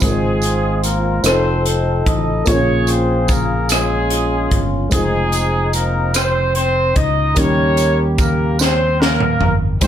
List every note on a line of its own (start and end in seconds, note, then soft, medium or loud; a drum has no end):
0.00 1.20 G#1 medium
0.00 1.21 G#2 soft
0.00 0.80 G#3 medium
0.00 1.22 C4 soft
0.00 1.21 C4 medium
0.00 1.22 D#4 soft
0.00 1.23 F4 soft
0.00 1.21 F4 soft
0.00 1.25 G#4 soft
0.00 0.80 G#4 medium
0.00 0.09 A#4 soft
0.00 kick medium
0.00 closed hi-hat medium
0.00 tambourine soft
0.10 1.24 C5 medium
0.42 closed hi-hat soft
0.42 tambourine soft
0.83 1.25 A#3 medium
0.83 1.25 A#4 medium
0.83 closed hi-hat soft
0.83 tambourine soft
1.23 2.02 F1 medium
1.23 2.44 C4 medium
1.23 1.64 C4 medium
1.23 2.46 D#4 soft
1.23 2.07 D#4 medium
1.23 2.45 F4 soft
1.23 2.47 A4 soft
1.23 2.43 A4 medium
1.23 1.64 C5 medium
1.23 2.47 C5 medium
1.23 cross-stick medium
1.23 closed hi-hat medium
1.23 tambourine medium
1.65 2.03 C4 medium
1.65 2.03 C5 medium
1.65 closed hi-hat soft
2.06 2.44 A1 medium
2.06 2.47 D#4 medium
2.06 2.47 D#5 medium
2.06 kick medium
2.06 closed hi-hat soft
2.44 4.47 A#1 medium
2.44 3.65 A#2 soft
2.44 4.87 A#3 soft
2.44 2.53 C4 soft
2.44 2.88 C#4 medium
2.44 4.88 F4 soft
2.44 2.88 C#5 medium
2.44 kick medium
2.44 closed hi-hat medium
2.44 tambourine soft
2.48 4.90 C#4 soft
2.48 3.66 F4 medium
2.48 4.89 G#4 soft
2.48 3.66 G#4 medium
2.48 4.89 A#4 medium
2.87 3.29 C4 medium
2.87 3.29 C5 medium
2.87 closed hi-hat soft
2.87 tambourine soft
3.28 3.70 A#3 medium
3.28 3.70 A#4 medium
3.28 kick medium
3.28 closed hi-hat soft
3.28 tambourine soft
3.69 4.62 G#3 medium
3.69 4.89 C#4 medium
3.69 4.89 F4 medium
3.69 4.62 G#4 medium
3.69 cross-stick medium
3.69 closed hi-hat medium
3.69 tambourine medium
4.10 closed hi-hat soft
4.51 4.89 G1 medium
4.51 kick medium
4.51 closed hi-hat soft
4.89 6.92 F1 medium
4.89 7.32 G#3 soft
4.89 5.70 G#3 medium
4.89 7.32 C4 soft
4.89 7.33 D#4 soft
4.89 5.70 G#4 medium
4.89 kick medium
4.89 closed hi-hat medium
4.89 tambourine soft
4.94 6.11 C4 medium
4.94 6.11 D#4 medium
4.94 7.34 F4 soft
4.94 7.34 G#4 medium
5.32 closed hi-hat soft
5.32 tambourine soft
5.73 6.14 A#3 medium
5.73 6.14 A#4 medium
5.73 closed hi-hat soft
5.73 tambourine soft
6.14 6.54 C4 medium
6.14 6.54 C5 medium
6.14 cross-stick medium
6.14 closed hi-hat medium
6.14 tambourine medium
6.55 6.93 C4 medium
6.55 6.93 C5 medium
6.55 closed hi-hat soft
6.96 7.34 C#2 medium
6.96 7.37 D#4 medium
6.96 7.37 D#5 medium
6.96 kick medium
6.96 closed hi-hat soft
7.35 9.37 D#2 medium
7.35 8.55 D#3 soft
7.35 9.76 G3 medium
7.35 9.77 A#3 soft
7.35 9.78 C#4 soft
7.35 8.02 C#4 medium
7.35 9.78 D#4 soft
7.35 8.56 G4 medium
7.35 8.02 A#4 medium
7.35 8.02 C#5 medium
7.35 kick medium
7.35 closed hi-hat medium
7.35 tambourine soft
7.40 9.79 G4 medium
7.77 closed hi-hat soft
7.77 tambourine soft
8.18 8.57 A#3 medium
8.18 8.57 A#4 medium
8.18 kick medium
8.18 closed hi-hat soft
8.18 tambourine soft
8.59 9.00 C4 medium
8.59 9.00 C5 medium
8.59 snare soft
8.59 tambourine medium
9.00 9.55 A#3 medium
9.00 9.55 A#4 medium
9.00 snare medium
9.20 mid tom medium
9.40 9.78 G1 medium
9.40 floor tom medium
9.81 9.87 G#1 medium
9.81 9.87 G#2 soft
9.81 9.87 G3 medium
9.81 9.87 G#3 soft
9.81 9.87 C4 soft
9.81 9.87 C4 medium
9.81 9.87 D#4 soft
9.81 9.87 D#4 medium
9.81 9.87 G4 medium
9.81 9.87 C5 medium
9.81 kick medium
9.81 closed hi-hat medium
9.81 tambourine soft